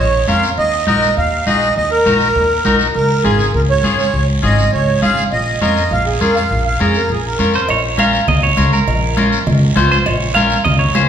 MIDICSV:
0, 0, Header, 1, 6, 480
1, 0, Start_track
1, 0, Key_signature, -5, "minor"
1, 0, Tempo, 296296
1, 935, Time_signature, 4, 2, 24, 8
1, 17963, End_track
2, 0, Start_track
2, 0, Title_t, "Accordion"
2, 0, Program_c, 0, 21
2, 0, Note_on_c, 0, 73, 91
2, 424, Note_off_c, 0, 73, 0
2, 470, Note_on_c, 0, 77, 99
2, 798, Note_off_c, 0, 77, 0
2, 947, Note_on_c, 0, 75, 104
2, 1387, Note_off_c, 0, 75, 0
2, 1411, Note_on_c, 0, 75, 96
2, 1860, Note_off_c, 0, 75, 0
2, 1904, Note_on_c, 0, 77, 90
2, 2347, Note_off_c, 0, 77, 0
2, 2382, Note_on_c, 0, 75, 96
2, 2826, Note_off_c, 0, 75, 0
2, 2862, Note_on_c, 0, 75, 98
2, 3083, Note_off_c, 0, 75, 0
2, 3096, Note_on_c, 0, 70, 86
2, 4473, Note_off_c, 0, 70, 0
2, 4785, Note_on_c, 0, 70, 90
2, 5229, Note_off_c, 0, 70, 0
2, 5254, Note_on_c, 0, 68, 88
2, 5703, Note_off_c, 0, 68, 0
2, 5744, Note_on_c, 0, 70, 76
2, 5851, Note_off_c, 0, 70, 0
2, 5991, Note_on_c, 0, 73, 86
2, 6447, Note_off_c, 0, 73, 0
2, 6472, Note_on_c, 0, 73, 82
2, 6913, Note_off_c, 0, 73, 0
2, 7191, Note_on_c, 0, 75, 95
2, 7633, Note_off_c, 0, 75, 0
2, 7669, Note_on_c, 0, 73, 83
2, 8112, Note_off_c, 0, 73, 0
2, 8148, Note_on_c, 0, 77, 98
2, 8480, Note_off_c, 0, 77, 0
2, 8621, Note_on_c, 0, 75, 91
2, 9068, Note_off_c, 0, 75, 0
2, 9098, Note_on_c, 0, 75, 85
2, 9591, Note_on_c, 0, 77, 88
2, 9595, Note_off_c, 0, 75, 0
2, 9810, Note_off_c, 0, 77, 0
2, 9822, Note_on_c, 0, 68, 77
2, 10045, Note_off_c, 0, 68, 0
2, 10057, Note_on_c, 0, 70, 82
2, 10283, Note_off_c, 0, 70, 0
2, 10293, Note_on_c, 0, 77, 76
2, 10744, Note_off_c, 0, 77, 0
2, 10789, Note_on_c, 0, 77, 84
2, 11010, Note_off_c, 0, 77, 0
2, 11033, Note_on_c, 0, 68, 78
2, 11275, Note_off_c, 0, 68, 0
2, 11278, Note_on_c, 0, 70, 75
2, 11514, Note_on_c, 0, 68, 76
2, 11518, Note_off_c, 0, 70, 0
2, 11756, Note_off_c, 0, 68, 0
2, 11756, Note_on_c, 0, 70, 70
2, 12196, Note_off_c, 0, 70, 0
2, 17963, End_track
3, 0, Start_track
3, 0, Title_t, "Clean electric guitar"
3, 0, Program_c, 1, 27
3, 12238, Note_on_c, 1, 72, 83
3, 12454, Note_off_c, 1, 72, 0
3, 12478, Note_on_c, 1, 73, 99
3, 12917, Note_off_c, 1, 73, 0
3, 12951, Note_on_c, 1, 77, 94
3, 13413, Note_off_c, 1, 77, 0
3, 13419, Note_on_c, 1, 75, 95
3, 13644, Note_off_c, 1, 75, 0
3, 13661, Note_on_c, 1, 73, 84
3, 14107, Note_off_c, 1, 73, 0
3, 14147, Note_on_c, 1, 70, 80
3, 15039, Note_off_c, 1, 70, 0
3, 16063, Note_on_c, 1, 72, 87
3, 16294, Note_off_c, 1, 72, 0
3, 16294, Note_on_c, 1, 73, 102
3, 16755, Note_off_c, 1, 73, 0
3, 16761, Note_on_c, 1, 77, 89
3, 17214, Note_off_c, 1, 77, 0
3, 17246, Note_on_c, 1, 75, 97
3, 17474, Note_off_c, 1, 75, 0
3, 17480, Note_on_c, 1, 73, 92
3, 17933, Note_off_c, 1, 73, 0
3, 17963, End_track
4, 0, Start_track
4, 0, Title_t, "Clean electric guitar"
4, 0, Program_c, 2, 27
4, 452, Note_on_c, 2, 61, 62
4, 461, Note_on_c, 2, 65, 62
4, 469, Note_on_c, 2, 70, 75
4, 789, Note_off_c, 2, 61, 0
4, 794, Note_off_c, 2, 65, 0
4, 798, Note_off_c, 2, 70, 0
4, 1410, Note_on_c, 2, 63, 70
4, 1419, Note_on_c, 2, 66, 55
4, 1426, Note_on_c, 2, 70, 71
4, 1749, Note_off_c, 2, 63, 0
4, 1753, Note_off_c, 2, 66, 0
4, 1757, Note_off_c, 2, 70, 0
4, 2376, Note_on_c, 2, 63, 67
4, 2388, Note_on_c, 2, 66, 51
4, 2390, Note_on_c, 2, 68, 69
4, 2715, Note_off_c, 2, 63, 0
4, 2715, Note_off_c, 2, 66, 0
4, 2720, Note_off_c, 2, 68, 0
4, 3330, Note_on_c, 2, 63, 65
4, 3337, Note_on_c, 2, 66, 59
4, 3346, Note_on_c, 2, 70, 71
4, 3670, Note_off_c, 2, 63, 0
4, 3674, Note_off_c, 2, 66, 0
4, 3678, Note_off_c, 2, 70, 0
4, 4297, Note_on_c, 2, 63, 76
4, 4305, Note_on_c, 2, 66, 69
4, 4318, Note_on_c, 2, 70, 77
4, 4634, Note_off_c, 2, 63, 0
4, 4639, Note_off_c, 2, 66, 0
4, 4642, Note_off_c, 2, 70, 0
4, 5255, Note_on_c, 2, 61, 63
4, 5264, Note_on_c, 2, 65, 64
4, 5274, Note_on_c, 2, 68, 66
4, 5593, Note_off_c, 2, 61, 0
4, 5599, Note_off_c, 2, 65, 0
4, 5601, Note_off_c, 2, 68, 0
4, 6217, Note_on_c, 2, 61, 67
4, 6224, Note_on_c, 2, 65, 59
4, 6230, Note_on_c, 2, 68, 63
4, 6554, Note_off_c, 2, 61, 0
4, 6555, Note_off_c, 2, 65, 0
4, 6561, Note_off_c, 2, 68, 0
4, 7170, Note_on_c, 2, 61, 70
4, 7180, Note_on_c, 2, 65, 52
4, 7185, Note_on_c, 2, 68, 72
4, 7512, Note_off_c, 2, 61, 0
4, 7514, Note_off_c, 2, 65, 0
4, 7519, Note_off_c, 2, 68, 0
4, 8133, Note_on_c, 2, 61, 63
4, 8144, Note_on_c, 2, 68, 73
4, 8146, Note_on_c, 2, 65, 53
4, 8474, Note_off_c, 2, 61, 0
4, 8476, Note_off_c, 2, 65, 0
4, 8479, Note_off_c, 2, 68, 0
4, 9095, Note_on_c, 2, 61, 68
4, 9106, Note_on_c, 2, 65, 52
4, 9109, Note_on_c, 2, 70, 74
4, 9436, Note_off_c, 2, 61, 0
4, 9437, Note_off_c, 2, 65, 0
4, 9442, Note_off_c, 2, 70, 0
4, 10059, Note_on_c, 2, 61, 62
4, 10064, Note_on_c, 2, 65, 63
4, 10080, Note_on_c, 2, 68, 60
4, 10397, Note_off_c, 2, 61, 0
4, 10401, Note_off_c, 2, 65, 0
4, 10404, Note_off_c, 2, 68, 0
4, 11018, Note_on_c, 2, 61, 70
4, 11025, Note_on_c, 2, 65, 64
4, 11033, Note_on_c, 2, 70, 78
4, 11357, Note_off_c, 2, 61, 0
4, 11360, Note_off_c, 2, 65, 0
4, 11364, Note_off_c, 2, 70, 0
4, 11971, Note_on_c, 2, 61, 70
4, 11987, Note_on_c, 2, 65, 59
4, 11990, Note_on_c, 2, 70, 74
4, 12315, Note_off_c, 2, 61, 0
4, 12317, Note_off_c, 2, 65, 0
4, 12323, Note_off_c, 2, 70, 0
4, 12925, Note_on_c, 2, 61, 73
4, 12937, Note_on_c, 2, 65, 59
4, 12940, Note_on_c, 2, 70, 83
4, 13272, Note_off_c, 2, 61, 0
4, 13274, Note_off_c, 2, 65, 0
4, 13277, Note_off_c, 2, 70, 0
4, 13885, Note_on_c, 2, 61, 71
4, 13892, Note_on_c, 2, 65, 58
4, 13901, Note_on_c, 2, 70, 58
4, 14229, Note_off_c, 2, 61, 0
4, 14234, Note_off_c, 2, 65, 0
4, 14235, Note_off_c, 2, 70, 0
4, 14853, Note_on_c, 2, 61, 88
4, 14857, Note_on_c, 2, 65, 73
4, 14877, Note_on_c, 2, 70, 73
4, 15193, Note_off_c, 2, 61, 0
4, 15197, Note_off_c, 2, 65, 0
4, 15200, Note_off_c, 2, 70, 0
4, 15805, Note_on_c, 2, 61, 82
4, 15817, Note_on_c, 2, 65, 65
4, 15823, Note_on_c, 2, 72, 95
4, 16149, Note_off_c, 2, 61, 0
4, 16151, Note_off_c, 2, 65, 0
4, 16157, Note_off_c, 2, 72, 0
4, 16768, Note_on_c, 2, 61, 78
4, 16782, Note_on_c, 2, 65, 57
4, 16787, Note_on_c, 2, 70, 85
4, 17110, Note_off_c, 2, 61, 0
4, 17113, Note_off_c, 2, 65, 0
4, 17118, Note_off_c, 2, 70, 0
4, 17735, Note_on_c, 2, 61, 70
4, 17740, Note_on_c, 2, 65, 65
4, 17754, Note_on_c, 2, 72, 69
4, 17963, Note_off_c, 2, 61, 0
4, 17963, Note_off_c, 2, 65, 0
4, 17963, Note_off_c, 2, 72, 0
4, 17963, End_track
5, 0, Start_track
5, 0, Title_t, "Upright bass"
5, 0, Program_c, 3, 32
5, 0, Note_on_c, 3, 34, 93
5, 358, Note_off_c, 3, 34, 0
5, 454, Note_on_c, 3, 41, 83
5, 839, Note_off_c, 3, 41, 0
5, 933, Note_on_c, 3, 39, 89
5, 1318, Note_off_c, 3, 39, 0
5, 1413, Note_on_c, 3, 34, 90
5, 1799, Note_off_c, 3, 34, 0
5, 1895, Note_on_c, 3, 39, 91
5, 2280, Note_off_c, 3, 39, 0
5, 2372, Note_on_c, 3, 34, 74
5, 2758, Note_off_c, 3, 34, 0
5, 2857, Note_on_c, 3, 39, 82
5, 3241, Note_off_c, 3, 39, 0
5, 3334, Note_on_c, 3, 34, 84
5, 3720, Note_off_c, 3, 34, 0
5, 3816, Note_on_c, 3, 39, 89
5, 4201, Note_off_c, 3, 39, 0
5, 4296, Note_on_c, 3, 34, 77
5, 4681, Note_off_c, 3, 34, 0
5, 4783, Note_on_c, 3, 37, 76
5, 5166, Note_off_c, 3, 37, 0
5, 5261, Note_on_c, 3, 32, 86
5, 5645, Note_off_c, 3, 32, 0
5, 5739, Note_on_c, 3, 37, 85
5, 6123, Note_off_c, 3, 37, 0
5, 6214, Note_on_c, 3, 32, 72
5, 6601, Note_off_c, 3, 32, 0
5, 6700, Note_on_c, 3, 37, 84
5, 7084, Note_off_c, 3, 37, 0
5, 7178, Note_on_c, 3, 32, 94
5, 7563, Note_off_c, 3, 32, 0
5, 7659, Note_on_c, 3, 37, 83
5, 8044, Note_off_c, 3, 37, 0
5, 8140, Note_on_c, 3, 32, 69
5, 8525, Note_off_c, 3, 32, 0
5, 8623, Note_on_c, 3, 34, 84
5, 9007, Note_off_c, 3, 34, 0
5, 9101, Note_on_c, 3, 41, 91
5, 9486, Note_off_c, 3, 41, 0
5, 9574, Note_on_c, 3, 34, 92
5, 9961, Note_off_c, 3, 34, 0
5, 10054, Note_on_c, 3, 41, 76
5, 10442, Note_off_c, 3, 41, 0
5, 10541, Note_on_c, 3, 34, 91
5, 10926, Note_off_c, 3, 34, 0
5, 11022, Note_on_c, 3, 41, 84
5, 11407, Note_off_c, 3, 41, 0
5, 11499, Note_on_c, 3, 34, 87
5, 11884, Note_off_c, 3, 34, 0
5, 11973, Note_on_c, 3, 41, 75
5, 12361, Note_off_c, 3, 41, 0
5, 12454, Note_on_c, 3, 34, 88
5, 13225, Note_off_c, 3, 34, 0
5, 13413, Note_on_c, 3, 37, 87
5, 13801, Note_off_c, 3, 37, 0
5, 13889, Note_on_c, 3, 37, 76
5, 14278, Note_off_c, 3, 37, 0
5, 14374, Note_on_c, 3, 34, 90
5, 15144, Note_off_c, 3, 34, 0
5, 15334, Note_on_c, 3, 37, 94
5, 15720, Note_off_c, 3, 37, 0
5, 15818, Note_on_c, 3, 37, 86
5, 16202, Note_off_c, 3, 37, 0
5, 16298, Note_on_c, 3, 34, 92
5, 17065, Note_off_c, 3, 34, 0
5, 17258, Note_on_c, 3, 37, 92
5, 17641, Note_off_c, 3, 37, 0
5, 17737, Note_on_c, 3, 37, 83
5, 17963, Note_off_c, 3, 37, 0
5, 17963, End_track
6, 0, Start_track
6, 0, Title_t, "Drums"
6, 448, Note_on_c, 9, 63, 69
6, 457, Note_on_c, 9, 73, 67
6, 610, Note_off_c, 9, 63, 0
6, 619, Note_off_c, 9, 73, 0
6, 700, Note_on_c, 9, 73, 70
6, 862, Note_off_c, 9, 73, 0
6, 931, Note_on_c, 9, 63, 32
6, 934, Note_on_c, 9, 74, 69
6, 1093, Note_off_c, 9, 63, 0
6, 1096, Note_off_c, 9, 74, 0
6, 1407, Note_on_c, 9, 63, 81
6, 1418, Note_on_c, 9, 73, 63
6, 1569, Note_off_c, 9, 63, 0
6, 1580, Note_off_c, 9, 73, 0
6, 1658, Note_on_c, 9, 73, 66
6, 1820, Note_off_c, 9, 73, 0
6, 1893, Note_on_c, 9, 63, 32
6, 1898, Note_on_c, 9, 74, 64
6, 2055, Note_off_c, 9, 63, 0
6, 2060, Note_off_c, 9, 74, 0
6, 2378, Note_on_c, 9, 73, 69
6, 2380, Note_on_c, 9, 63, 71
6, 2540, Note_off_c, 9, 73, 0
6, 2542, Note_off_c, 9, 63, 0
6, 2617, Note_on_c, 9, 73, 63
6, 2779, Note_off_c, 9, 73, 0
6, 2851, Note_on_c, 9, 74, 67
6, 2869, Note_on_c, 9, 63, 32
6, 3013, Note_off_c, 9, 74, 0
6, 3031, Note_off_c, 9, 63, 0
6, 3341, Note_on_c, 9, 63, 74
6, 3346, Note_on_c, 9, 73, 65
6, 3503, Note_off_c, 9, 63, 0
6, 3508, Note_off_c, 9, 73, 0
6, 3573, Note_on_c, 9, 73, 64
6, 3735, Note_off_c, 9, 73, 0
6, 3815, Note_on_c, 9, 74, 61
6, 3824, Note_on_c, 9, 63, 33
6, 3977, Note_off_c, 9, 74, 0
6, 3986, Note_off_c, 9, 63, 0
6, 4292, Note_on_c, 9, 73, 67
6, 4294, Note_on_c, 9, 63, 80
6, 4454, Note_off_c, 9, 73, 0
6, 4456, Note_off_c, 9, 63, 0
6, 4523, Note_on_c, 9, 73, 73
6, 4685, Note_off_c, 9, 73, 0
6, 4771, Note_on_c, 9, 74, 66
6, 4778, Note_on_c, 9, 63, 35
6, 4933, Note_off_c, 9, 74, 0
6, 4940, Note_off_c, 9, 63, 0
6, 5252, Note_on_c, 9, 63, 78
6, 5260, Note_on_c, 9, 73, 62
6, 5414, Note_off_c, 9, 63, 0
6, 5422, Note_off_c, 9, 73, 0
6, 5499, Note_on_c, 9, 73, 67
6, 5661, Note_off_c, 9, 73, 0
6, 5740, Note_on_c, 9, 63, 33
6, 5741, Note_on_c, 9, 74, 66
6, 5902, Note_off_c, 9, 63, 0
6, 5903, Note_off_c, 9, 74, 0
6, 6214, Note_on_c, 9, 63, 74
6, 6223, Note_on_c, 9, 73, 64
6, 6376, Note_off_c, 9, 63, 0
6, 6385, Note_off_c, 9, 73, 0
6, 6468, Note_on_c, 9, 73, 70
6, 6630, Note_off_c, 9, 73, 0
6, 6706, Note_on_c, 9, 74, 72
6, 6868, Note_off_c, 9, 74, 0
6, 7181, Note_on_c, 9, 63, 69
6, 7192, Note_on_c, 9, 73, 55
6, 7343, Note_off_c, 9, 63, 0
6, 7354, Note_off_c, 9, 73, 0
6, 7429, Note_on_c, 9, 73, 67
6, 7591, Note_off_c, 9, 73, 0
6, 7661, Note_on_c, 9, 63, 33
6, 7673, Note_on_c, 9, 74, 62
6, 7823, Note_off_c, 9, 63, 0
6, 7835, Note_off_c, 9, 74, 0
6, 8140, Note_on_c, 9, 63, 77
6, 8146, Note_on_c, 9, 73, 65
6, 8302, Note_off_c, 9, 63, 0
6, 8308, Note_off_c, 9, 73, 0
6, 8380, Note_on_c, 9, 73, 66
6, 8542, Note_off_c, 9, 73, 0
6, 8615, Note_on_c, 9, 74, 65
6, 8620, Note_on_c, 9, 63, 36
6, 8777, Note_off_c, 9, 74, 0
6, 8782, Note_off_c, 9, 63, 0
6, 9097, Note_on_c, 9, 63, 71
6, 9098, Note_on_c, 9, 73, 64
6, 9259, Note_off_c, 9, 63, 0
6, 9260, Note_off_c, 9, 73, 0
6, 9347, Note_on_c, 9, 73, 64
6, 9509, Note_off_c, 9, 73, 0
6, 9577, Note_on_c, 9, 74, 71
6, 9588, Note_on_c, 9, 63, 32
6, 9739, Note_off_c, 9, 74, 0
6, 9750, Note_off_c, 9, 63, 0
6, 10052, Note_on_c, 9, 73, 70
6, 10063, Note_on_c, 9, 63, 72
6, 10214, Note_off_c, 9, 73, 0
6, 10225, Note_off_c, 9, 63, 0
6, 10289, Note_on_c, 9, 73, 66
6, 10451, Note_off_c, 9, 73, 0
6, 10523, Note_on_c, 9, 74, 71
6, 10545, Note_on_c, 9, 63, 33
6, 10685, Note_off_c, 9, 74, 0
6, 10707, Note_off_c, 9, 63, 0
6, 11008, Note_on_c, 9, 73, 63
6, 11022, Note_on_c, 9, 63, 72
6, 11170, Note_off_c, 9, 73, 0
6, 11184, Note_off_c, 9, 63, 0
6, 11247, Note_on_c, 9, 73, 68
6, 11409, Note_off_c, 9, 73, 0
6, 11489, Note_on_c, 9, 74, 66
6, 11499, Note_on_c, 9, 63, 33
6, 11651, Note_off_c, 9, 74, 0
6, 11661, Note_off_c, 9, 63, 0
6, 11973, Note_on_c, 9, 73, 67
6, 11976, Note_on_c, 9, 63, 76
6, 12135, Note_off_c, 9, 73, 0
6, 12138, Note_off_c, 9, 63, 0
6, 12207, Note_on_c, 9, 73, 69
6, 12369, Note_off_c, 9, 73, 0
6, 12451, Note_on_c, 9, 56, 96
6, 12452, Note_on_c, 9, 63, 35
6, 12456, Note_on_c, 9, 74, 69
6, 12613, Note_off_c, 9, 56, 0
6, 12614, Note_off_c, 9, 63, 0
6, 12618, Note_off_c, 9, 74, 0
6, 12928, Note_on_c, 9, 63, 79
6, 12937, Note_on_c, 9, 73, 70
6, 12940, Note_on_c, 9, 56, 74
6, 13090, Note_off_c, 9, 63, 0
6, 13099, Note_off_c, 9, 73, 0
6, 13102, Note_off_c, 9, 56, 0
6, 13173, Note_on_c, 9, 73, 67
6, 13335, Note_off_c, 9, 73, 0
6, 13410, Note_on_c, 9, 63, 36
6, 13410, Note_on_c, 9, 64, 85
6, 13412, Note_on_c, 9, 74, 69
6, 13413, Note_on_c, 9, 56, 84
6, 13572, Note_off_c, 9, 63, 0
6, 13572, Note_off_c, 9, 64, 0
6, 13574, Note_off_c, 9, 74, 0
6, 13575, Note_off_c, 9, 56, 0
6, 13888, Note_on_c, 9, 63, 77
6, 13892, Note_on_c, 9, 56, 66
6, 13893, Note_on_c, 9, 73, 70
6, 14050, Note_off_c, 9, 63, 0
6, 14054, Note_off_c, 9, 56, 0
6, 14055, Note_off_c, 9, 73, 0
6, 14140, Note_on_c, 9, 73, 71
6, 14302, Note_off_c, 9, 73, 0
6, 14375, Note_on_c, 9, 63, 38
6, 14378, Note_on_c, 9, 74, 73
6, 14380, Note_on_c, 9, 56, 100
6, 14537, Note_off_c, 9, 63, 0
6, 14540, Note_off_c, 9, 74, 0
6, 14542, Note_off_c, 9, 56, 0
6, 14854, Note_on_c, 9, 73, 62
6, 14856, Note_on_c, 9, 63, 81
6, 14864, Note_on_c, 9, 56, 72
6, 15016, Note_off_c, 9, 73, 0
6, 15018, Note_off_c, 9, 63, 0
6, 15026, Note_off_c, 9, 56, 0
6, 15104, Note_on_c, 9, 73, 73
6, 15266, Note_off_c, 9, 73, 0
6, 15340, Note_on_c, 9, 63, 38
6, 15340, Note_on_c, 9, 64, 82
6, 15342, Note_on_c, 9, 56, 83
6, 15344, Note_on_c, 9, 74, 75
6, 15502, Note_off_c, 9, 63, 0
6, 15502, Note_off_c, 9, 64, 0
6, 15504, Note_off_c, 9, 56, 0
6, 15506, Note_off_c, 9, 74, 0
6, 15810, Note_on_c, 9, 63, 77
6, 15821, Note_on_c, 9, 73, 72
6, 15823, Note_on_c, 9, 56, 58
6, 15823, Note_on_c, 9, 66, 62
6, 15972, Note_off_c, 9, 63, 0
6, 15983, Note_off_c, 9, 73, 0
6, 15985, Note_off_c, 9, 56, 0
6, 15985, Note_off_c, 9, 66, 0
6, 16066, Note_on_c, 9, 73, 65
6, 16228, Note_off_c, 9, 73, 0
6, 16298, Note_on_c, 9, 63, 36
6, 16299, Note_on_c, 9, 56, 98
6, 16303, Note_on_c, 9, 74, 73
6, 16460, Note_off_c, 9, 63, 0
6, 16461, Note_off_c, 9, 56, 0
6, 16465, Note_off_c, 9, 74, 0
6, 16775, Note_on_c, 9, 56, 70
6, 16778, Note_on_c, 9, 63, 78
6, 16782, Note_on_c, 9, 73, 68
6, 16937, Note_off_c, 9, 56, 0
6, 16940, Note_off_c, 9, 63, 0
6, 16944, Note_off_c, 9, 73, 0
6, 17012, Note_on_c, 9, 73, 75
6, 17174, Note_off_c, 9, 73, 0
6, 17251, Note_on_c, 9, 74, 66
6, 17258, Note_on_c, 9, 56, 89
6, 17264, Note_on_c, 9, 63, 36
6, 17264, Note_on_c, 9, 64, 86
6, 17413, Note_off_c, 9, 74, 0
6, 17420, Note_off_c, 9, 56, 0
6, 17426, Note_off_c, 9, 63, 0
6, 17426, Note_off_c, 9, 64, 0
6, 17734, Note_on_c, 9, 63, 81
6, 17734, Note_on_c, 9, 73, 72
6, 17740, Note_on_c, 9, 56, 60
6, 17740, Note_on_c, 9, 66, 69
6, 17896, Note_off_c, 9, 63, 0
6, 17896, Note_off_c, 9, 73, 0
6, 17902, Note_off_c, 9, 56, 0
6, 17902, Note_off_c, 9, 66, 0
6, 17963, End_track
0, 0, End_of_file